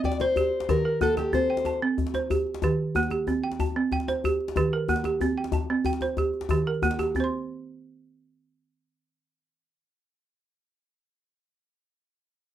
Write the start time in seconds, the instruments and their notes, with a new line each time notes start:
Already playing: balafon C4 A5
0.04 steel-string acoustic guitar D5, balafon G5, djembe slap, djembe bass
0.12 djembe slap
0.20 steel-string acoustic guitar C5, balafon C5, djembe slap, djembe tone
0.36 balafon G4, djembe bass
0.53 djembe slap
0.60 djembe slap
0.69 balafon D#3 G4, steel-string acoustic guitar A#4, djembe slap, djembe tone, djembe bass
0.77 djembe slap
0.85 balafon A#4
1.01 balafon A#3, steel-string acoustic guitar A4, djembe bass
1.17 balafon G4, steel-string acoustic guitar G4, djembe slap, djembe tone
1.33 balafon C4, steel-string acoustic guitar C5, djembe bass
1.50 balafon G5
1.57 djembe slap
1.65 balafon A5, djembe tone
1.82 balafon C4
1.98 djembe slap, djembe bass
2.06 djembe slap
2.14 balafon C5, djembe slap, djembe tone
2.30 balafon G4, djembe bass
2.47 djembe slap
2.54 djembe slap
2.62 balafon D#3 G4, djembe slap, djembe tone, djembe bass
2.71 djembe slap
2.95 balafon A#3, djembe bass
3.03 djembe slap
3.10 balafon G4, djembe slap, djembe tone
3.27 balafon C4, djembe bass
3.44 balafon G5
3.52 djembe slap
3.60 balafon A5, djembe tone, djembe bass
3.76 balafon C4
3.92 balafon G5, djembe slap, djembe bass
4.00 djembe slap
4.08 balafon C5, djembe slap, djembe tone
4.24 balafon G4, djembe bass
4.40 djembe slap
4.48 djembe slap
4.56 balafon D#3 G4, djembe slap, djembe tone, djembe bass
4.64 djembe slap
4.73 balafon A#4
4.88 balafon A#3, djembe bass
4.96 djembe slap
5.04 balafon G4, djembe slap, djembe tone
5.21 balafon C4, djembe bass
5.38 balafon G5
5.44 djembe slap
5.52 balafon A5, djembe slap, djembe tone, djembe bass
5.70 balafon C4
5.77 djembe slap
5.85 balafon G5, djembe bass
5.93 djembe slap
6.01 balafon C5, djembe tone
6.17 balafon G4, djembe slap, djembe bass
6.25 djembe slap
6.33 djembe slap
6.41 djembe slap
6.49 balafon D#3 G4, djembe tone, djembe bass
6.57 djembe slap
6.66 balafon A#4, djembe slap
6.74 djembe slap
6.82 balafon A#3, djembe bass
6.91 djembe slap
6.99 balafon G4, djembe tone
7.15 balafon C4, djembe bass
7.20 balafon C5 C6